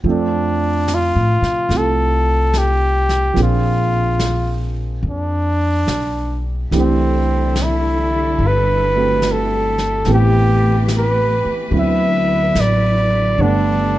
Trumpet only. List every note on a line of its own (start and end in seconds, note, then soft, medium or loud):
0.11 0.96 D4 medium
0.94 1.79 F4 medium
1.77 2.59 A4 medium
2.58 3.38 G4 medium
3.43 4.75 F4 medium
5.10 6.43 D4 medium
6.80 7.64 C4 medium
7.63 8.49 E4 medium
8.47 9.33 B4 medium
9.32 10.10 A4 medium
10.14 10.89 G4 medium
10.98 11.55 B4 medium
11.79 12.62 E5 medium
12.60 13.43 D5 medium
13.41 13.99 D4 medium